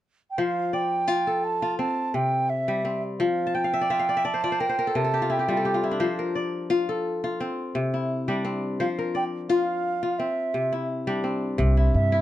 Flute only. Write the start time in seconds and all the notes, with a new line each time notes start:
0.31 G5
0.39 F5
0.74 G5
1.44 A5
1.79 A5
2.15 G5
2.50 E5
3.20 F5
3.55 G5
4.25 A5
4.60 G5
4.96 A5
5.32 G5
8.80 F5
9.16 G5
9.49 F5
10.19 E5
11.95 E5